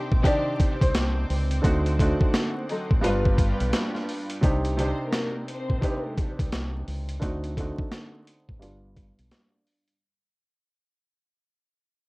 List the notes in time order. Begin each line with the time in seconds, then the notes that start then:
Already playing: C3 C4 D#4 G4 C5 D#5 G5 D6
0.12 A#1, kick
0.23 C3 D#3 C4 D4 D#4 G4 D5, kick, closed hi-hat
0.59 kick, closed hi-hat
0.81 C2 C5, kick, closed hi-hat
0.94 C2, snare, closed hi-hat
1.30 C#2, open hi-hat
1.51 closed hi-hat
1.62 D2 D3 A3 C4 D#4 F#4 F#5, kick, closed hi-hat
1.86 closed hi-hat
1.99 D3 A3 C4 D#4 F#4, kick, closed hi-hat
2.20 kick
2.34 snare, closed hi-hat
2.69 F#3 D#4 A4, closed hi-hat
2.91 A1, kick
3.01 G1 G2 G3 B3 D4 F4 B4 G5, closed hi-hat
3.26 kick
3.38 kick, closed hi-hat
3.61 B1, closed hi-hat
3.73 snare, closed hi-hat
3.95 snare
4.09 open hi-hat
4.30 closed hi-hat
4.41 C2 C3 C4 D4 D#4 G4, kick, closed hi-hat
4.65 closed hi-hat
4.77 C3 C4 D4 D#4 G4 C5, closed hi-hat
5.10 A#3 A#4, snare, closed hi-hat
5.48 C4 C5, closed hi-hat
5.70 A#1, kick
5.81 C3 C4 D4 D#4 G4, kick, closed hi-hat
6.18 kick, closed hi-hat
6.39 C2, kick, closed hi-hat
6.52 C2, snare, closed hi-hat
6.88 C#2, open hi-hat
7.09 closed hi-hat
7.20 D2 D3 A3 C4 D#4 F#4, kick, closed hi-hat
7.44 closed hi-hat
7.57 D3 A3 C4 D#4 F#4, kick, closed hi-hat
7.78 kick
7.92 snare, closed hi-hat
8.27 closed hi-hat
8.49 A1, kick
8.59 G1 G2 G3 B3 D4 F4, closed hi-hat
8.97 kick, closed hi-hat
9.19 B1, closed hi-hat
9.31 snare, closed hi-hat
9.67 open hi-hat
9.88 closed hi-hat